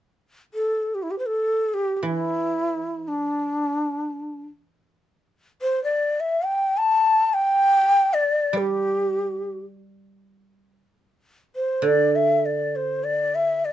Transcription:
0.54 shakuhachi A4
0.95 shakuhachi G4
1.03 shakuhachi E4
1.11 shakuhachi G4
1.19 shakuhachi C5
1.27 shakuhachi A4
1.74 shakuhachi G4
1.97 shakuhachi G4
2.03 guzheng E3, shakuhachi E4
3.08 shakuhachi D4
5.62 shakuhachi C5
5.84 shakuhachi D5
6.20 shakuhachi E5
6.45 shakuhachi G5
6.78 shakuhachi A5
7.34 shakuhachi G5
8.14 shakuhachi D5
8.53 guzheng G3
8.57 shakuhachi G4
11.56 shakuhachi C5
11.82 guzheng D3
11.86 shakuhachi D5
12.16 shakuhachi E5
12.46 shakuhachi D5
12.76 shakuhachi C5
13.04 shakuhachi D5
13.35 shakuhachi E5
13.65 shakuhachi D5

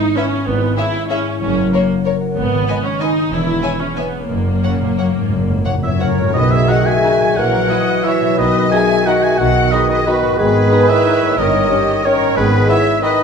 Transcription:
Already playing: harp G#2 G#3 B3 B4, viola section D#4
0.00 harp E4
0.16 viola section C#4, violin section B4 E5, harp B4
0.32 harp E4
0.46 double bass section G#1, cello section G#2, harp G#2, viola section B3
0.62 harp G#3
0.77 harp C#4, viola section E4, violin section G#4 C#5 E5
0.95 harp E4
1.10 viola section C#4, violin section G#4 C#5 E5, harp G#4
1.26 harp E4
1.41 double bass section F#1, cello section F#2, harp F#2, viola section C#4
1.57 harp C#3
1.72 viola section A#3, harp C#4, violin section A#4 C#5
1.89 harp F#4
2.05 harp A#4, violin section A#4 C#5
2.21 harp F#4
2.36 double bass section G#1, harp G#2, cello section G#2, viola section B3
2.52 harp D#3
2.68 harp G#3, violin section B4 D#5 G#5
2.83 viola section C#4
3.00 viola section D#4, violin section B4 D#5 G#5, harp B4
3.16 harp D#4
3.30 double bass section E1, harp E2, cello section E2, viola section E4
3.46 harp E3
3.62 harp G#3, violin section C#5 E5 G#5
3.79 harp C#4, viola section C#4
3.96 viola section B3, harp C#5, violin section C#5 E5 G#5
4.13 harp C#4
4.29 double bass section F#1, harp F#2, cello section F#2, timpani F#2, viola section A#3
4.46 harp C#3
4.52 timpani F#2
4.60 timpani F#2, cello section C#3, harp F#3, violin section C#5
4.64 timpani F#2, violin section F#5
4.76 timpani F#2
4.81 timpani F#2, cello section A#2, harp C#4
4.92 timpani F#2
4.98 cello section F#2, timpani F#2, violin section C#5 F#5, harp C#5
5.15 timpani F#2, cello section G#2, harp C#4
5.22 timpani F#2
5.29 double bass section F#1, timpani F#2, harp F#2, cello section F#2
5.36 timpani F#2
5.43 timpani F#2
5.48 cello section C#2, timpani F#2, harp C#3
5.58 timpani F#2
5.65 cello section D#2, timpani F#2, harp F#3, violin section C#5 F#5
5.74 timpani F#2
5.81 cello section E2, timpani F#2, harp C#4, french horn section E4, flute section C#5, violin section E5, oboe E5
5.88 timpani F#2
5.96 timpani F#2
6.00 cello section F#2, timpani F#2, french horn section C#4, flute section A#4, oboe C#5, harp C#5, violin section C#5 F#5
6.11 timpani F#2
6.16 timpani F#2, cello section G#2, harp B2 C#4
6.21 harp F#3
6.25 timpani F#2, harp D#4
6.29 viola section G#4, harp B4
6.34 double bass section B1, cello section B2, timpani B2, bassoon D#3, french horn section D#4, clarinet F#4, flute section B4, oboe D#5, violin section D#5
6.51 french horn section E4, flute section C#5, oboe E5, violin section E5
6.68 violin section D#4 F#5, french horn section F#4, flute section D#5, oboe F#5
6.86 french horn section G#4, flute section E5, oboe G#5, violin section G#5
7.04 violin section D#4, viola section F#4
7.19 harp A#2
7.24 harp F#3
7.29 harp E4
7.33 harp C#5, flute section C#5, oboe F#5
7.37 double bass section A#1, cello section A#2, bassoon E3, clarinet F#4, french horn section F#4, viola section A#4, violin section F#5
7.70 violin section E4, viola section D#5
8.04 bassoon E3, violin section E4 E5, french horn section E4, clarinet F#4, viola section C#5, flute section C#5, oboe E5
8.20 harp B2
8.25 harp F#3
8.29 harp D#4
8.34 cello section B2, harp B4, viola section B4
8.38 double bass section B1, bassoon D#3, french horn section D#4, clarinet F#4, flute section B4, oboe D#5, violin section D#5
8.71 viola section D#4, violin section D#4 G#5, french horn section G#4, flute section E5, oboe G#5
9.05 bassoon D#3, violin section D#4 F#5, french horn section F#4, viola section F#4, clarinet F#4, flute section D#5, oboe F#5
9.22 french horn section G#4, flute section E5, violin section G#5, oboe G#5
9.38 double bass section B1, cello section B2, bassoon D#3, french horn section F#4, clarinet F#4, flute section D#5, oboe F#5, violin section F#5
9.71 bassoon D#3, french horn section D#4, violin section D#4 D#5, clarinet F#4, viola section G#4, flute section B4, oboe D#5
9.89 french horn section D#4, flute section B4, violin section D#5, oboe D#5
10.06 bassoon D#3, french horn section B3, violin section D#4 B4, flute section F#4, viola section F#4, clarinet F#4, oboe B4
10.21 harp G#2
10.26 harp G#3
10.30 harp D#4
10.35 bassoon D#3, harp B4, oboe B4
10.39 double bass section G#1, cello section G#2, french horn section B3, viola section G#4, flute section G#4, clarinet G#4, violin section B4
10.72 violin section D#4, viola section B4
10.89 french horn section E4, flute section C#5, oboe E5, violin section E5
11.06 violin section D#4
11.21 harp G2
11.25 harp A#3
11.30 harp D#4
11.34 double bass section G1, harp C#5
11.38 cello section G2, bassoon D#3, french horn section D#4, flute section A#4, viola section A#4, clarinet C#5, violin section D#5, oboe D#5
11.71 violin section C#4, viola section G4
12.05 bassoon D#3, french horn section C#4, violin section C#4 C#5, viola section A#4, flute section A#4, clarinet C#5, oboe C#5
12.19 harp G#2
12.23 harp B3
12.32 harp B4, violin section B4, clarinet B4
12.36 double bass section G#1, cello section G#2, bassoon D#3, french horn section B3, flute section G#4, viola section G#4, oboe B4
12.68 violin section B3 E5, french horn section E4, flute section C#5, oboe E5
13.01 bassoon D#3, violin section B3 D#5, french horn section D#4, viola section B4, clarinet B4, flute section B4, oboe D#5

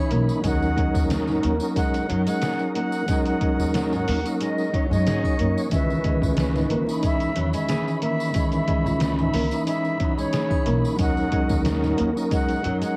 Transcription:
Already playing: tonewheel organ E3 C#4 D#4 B5, flute C#5
0.11 upright bass B1, nylon-string guitar A#3, closed hi-hat
0.29 tambourine
0.41 upright bass D#2, tonewheel organ F#3 C#4, nylon-string guitar G#3, kick, closed hi-hat, tambourine
0.45 tonewheel organ D#4 A#4, flute F#5
0.62 tambourine
0.76 nylon-string guitar G#3, kick, closed hi-hat
0.95 upright bass D#2, kick, tambourine
1.10 snare, closed hi-hat, tambourine
1.27 nylon-string guitar G#2, snare, tambourine
1.43 upright bass D#2, nylon-string guitar A#3, closed hi-hat
1.60 tonewheel organ F#3 C#4 D#4 A#4, tambourine
1.76 nylon-string guitar G#3, flute F#5, kick, closed hi-hat, tambourine
1.94 closed hi-hat, tambourine
2.06 upright bass F#2, tonewheel organ F#3 C#4, nylon-string guitar F#3, closed hi-hat
2.11 tonewheel organ D#4 A#4
2.27 nylon-string guitar G#3, flute F#5, closed hi-hat, tambourine
2.42 nylon-string guitar G#4, snare, closed hi-hat, tambourine
2.59 tambourine
2.75 nylon-string guitar A#3, flute F#5, closed hi-hat
2.92 tambourine
3.06 tonewheel organ F#3 C#4, nylon-string guitar G#3, kick, closed hi-hat, tambourine
3.11 tonewheel organ D#4 A#4
3.25 flute F#5, closed hi-hat, tambourine
3.41 nylon-string guitar G#3, kick, closed hi-hat
3.59 upright bass D#2, tambourine
3.74 snare, closed hi-hat, tambourine
3.92 nylon-string guitar G#2, flute F#5, tambourine
4.08 upright bass D#2, nylon-string guitar A#3, open hi-hat
4.24 tonewheel organ F#3 C#4 D#4 A#4, closed hi-hat, tambourine
4.40 nylon-string guitar G#3, flute D#5, closed hi-hat, tambourine
4.58 tambourine
4.72 tonewheel organ F#3 C#4 D#4 C#5, nylon-string guitar F#3, kick, closed hi-hat
4.88 upright bass F#2, tonewheel organ F#3 C#4, nylon-string guitar G#3
4.92 tonewheel organ D#4 C#5, flute D#5, tambourine
5.06 upright bass G#2, nylon-string guitar G#4, snare, closed hi-hat, tambourine
5.24 kick, tambourine, triangle
5.39 upright bass F#2, nylon-string guitar A#3, closed hi-hat
5.58 tambourine
5.70 upright bass C#2, tonewheel organ E3 C#4, nylon-string guitar G#3, flute E5, kick, closed hi-hat, tambourine
5.74 tonewheel organ D#3 B4
5.90 tambourine
6.04 nylon-string guitar G#3, kick, closed hi-hat
6.22 upright bass C#2, kick, tambourine
6.37 snare, closed hi-hat, tambourine
6.55 nylon-string guitar G#2, snare, tambourine
6.70 upright bass C#2, nylon-string guitar A#3, closed hi-hat
6.87 tonewheel organ E3 C#4 D#4 B5, tambourine
7.03 nylon-string guitar G#3, flute E5, kick, closed hi-hat, tambourine
7.20 closed hi-hat, tambourine
7.34 upright bass E2, tonewheel organ E3 C#4, nylon-string guitar F#3, closed hi-hat
7.39 tonewheel organ D#3 B5
7.53 nylon-string guitar G#3, flute E5, closed hi-hat, tambourine
7.69 nylon-string guitar G#4, snare, closed hi-hat, tambourine
7.88 tambourine
8.02 nylon-string guitar A#3, flute E5, closed hi-hat
8.20 tambourine
8.33 tonewheel organ E3 C#4, nylon-string guitar G#3, kick, closed hi-hat, tambourine
8.38 tonewheel organ D#3 B5
8.52 flute E5, closed hi-hat, tambourine
8.68 nylon-string guitar G#3, kick, closed hi-hat
8.86 upright bass C#2, tambourine
9.00 snare, closed hi-hat, tambourine
9.19 nylon-string guitar G#2, flute E5, tambourine
9.34 upright bass C#2, nylon-string guitar A#3, open hi-hat
9.51 tonewheel organ E3 C#4 D#4 B5, closed hi-hat, tambourine
9.67 nylon-string guitar G#3, flute E5, closed hi-hat, tambourine
9.85 tambourine
9.98 tonewheel organ E3 C#4, nylon-string guitar F#3, kick, closed hi-hat
10.02 tonewheel organ D#4 B5
10.18 nylon-string guitar G#3, flute C#5, tambourine
10.33 nylon-string guitar G#4, snare, closed hi-hat, tambourine
10.51 kick, tambourine, triangle
10.66 upright bass B1, nylon-string guitar A#3, closed hi-hat
10.85 tambourine
10.97 upright bass D#2, tonewheel organ F#3 C#4, nylon-string guitar G#3, kick, closed hi-hat, tambourine
11.01 tonewheel organ D#4 A#4, flute F#5
11.17 tambourine
11.32 nylon-string guitar G#3, kick, closed hi-hat
11.49 upright bass D#2, kick, tambourine
11.65 snare, closed hi-hat, tambourine
11.82 nylon-string guitar G#2, snare, tambourine
11.97 upright bass D#2, nylon-string guitar A#3, closed hi-hat
12.15 tonewheel organ F#3 C#4 D#4 A#4, tambourine
12.31 nylon-string guitar G#3, flute F#5, kick, closed hi-hat, tambourine
12.48 closed hi-hat, tambourine
12.61 tonewheel organ F#3 C#4, nylon-string guitar F#3, closed hi-hat
12.65 upright bass F#2, tonewheel organ D#4 A#4
12.81 nylon-string guitar G#3, flute F#5, closed hi-hat, tambourine

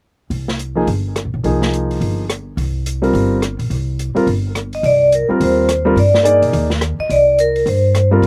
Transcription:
0.30 upright bass C2, open hi-hat
0.48 snare
0.59 closed hi-hat
0.75 grand piano F3 A#3 D#4 G#4
0.87 upright bass G1, open hi-hat
1.16 cross-stick, closed hi-hat
1.25 upright bass A#1
1.34 upright bass B1
1.43 upright bass C2, grand piano F3 A#3 D#4 G#4, open hi-hat
1.62 snare
1.73 closed hi-hat
1.91 open hi-hat
2.01 upright bass G1, open hi-hat
2.30 cross-stick, closed hi-hat
2.57 upright bass C2, open hi-hat
2.86 closed hi-hat
3.02 grand piano G3 C4 F4 A#4, open hi-hat
3.13 upright bass G1, open hi-hat
3.42 cross-stick, closed hi-hat
3.59 upright bass A#1, open hi-hat
3.70 upright bass C2, open hi-hat
3.99 closed hi-hat
4.15 grand piano G3 C4 F4 A#4, muted upright bass stroke, open hi-hat
4.27 upright bass G1, open hi-hat
4.55 cross-stick, closed hi-hat
4.73 vibraphone D#5, open hi-hat
4.83 upright bass C2, vibraphone D5, open hi-hat
5.12 vibraphone A#4, closed hi-hat
5.29 grand piano G3 C4 F4 A#4, muted upright bass stroke
5.40 upright bass D#2, vibraphone C5, open hi-hat
5.69 cross-stick, closed hi-hat
5.85 grand piano G3 C4 F4 A#4
5.96 upright bass G2, vibraphone D5, open hi-hat
6.14 snare
6.23 grand piano A#3 D#4 G#4 D5, closed hi-hat
6.42 upright bass B1, open hi-hat
6.53 upright bass D#2, open hi-hat
6.70 snare
6.81 cross-stick, closed hi-hat
6.99 vibraphone D#5, muted upright bass stroke
7.09 upright bass C2, vibraphone D5, open hi-hat
7.38 vibraphone A#4, closed hi-hat
7.56 open hi-hat
7.66 upright bass G2, vibraphone C5, open hi-hat
7.95 cross-stick, closed hi-hat
8.11 grand piano G3 C4 F4 A#4
8.22 upright bass C2, open hi-hat

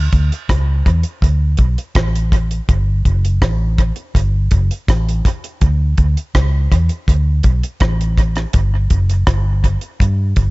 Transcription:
0.12 fingered electric bass D2, kick, closed hi-hat
0.32 closed hi-hat
0.49 fingered electric bass C#2, kick, cross-stick, closed hi-hat
0.86 fingered electric bass E2, kick, closed hi-hat
1.03 closed hi-hat
1.22 fingered electric bass D2, kick, closed hi-hat
1.57 fingered electric bass B1, kick, closed hi-hat
1.78 closed hi-hat
1.95 fingered electric bass A1, kick, cross-stick, closed hi-hat
2.16 closed hi-hat
2.32 kick, closed hi-hat
2.51 closed hi-hat
2.69 fingered electric bass G1, kick, closed hi-hat
3.05 fingered electric bass F#1, kick, closed hi-hat
3.25 closed hi-hat
3.42 fingered electric bass A1, kick, cross-stick, closed hi-hat
3.78 kick, closed hi-hat
3.96 closed hi-hat
4.15 fingered electric bass G1, kick, closed hi-hat
4.51 fingered electric bass F#1, kick, closed hi-hat
4.71 closed hi-hat
4.88 fingered electric bass A1, kick, cross-stick, closed hi-hat
5.09 closed hi-hat
5.25 kick, closed hi-hat
5.44 closed hi-hat
5.61 fingered electric bass D2, kick, closed hi-hat
5.98 fingered electric bass D2, kick, closed hi-hat
6.17 closed hi-hat
6.35 fingered electric bass C#2, kick, cross-stick, closed hi-hat
6.72 fingered electric bass E2, kick, closed hi-hat
6.89 closed hi-hat
7.08 fingered electric bass D2, kick, closed hi-hat
7.43 fingered electric bass B1, kick, closed hi-hat
7.63 closed hi-hat
7.80 fingered electric bass A1, kick, cross-stick, closed hi-hat
8.01 closed hi-hat
8.18 kick, closed hi-hat
8.36 cross-stick, closed hi-hat
8.53 fingered electric bass G1, kick, closed hi-hat
8.90 fingered electric bass F#1, kick, closed hi-hat
9.09 closed hi-hat
9.27 fingered electric bass G1, kick, cross-stick, closed hi-hat
9.64 kick, closed hi-hat
9.81 closed hi-hat
10.00 fingered electric bass G2, kick, closed hi-hat
10.36 fingered electric bass G1, kick, closed hi-hat

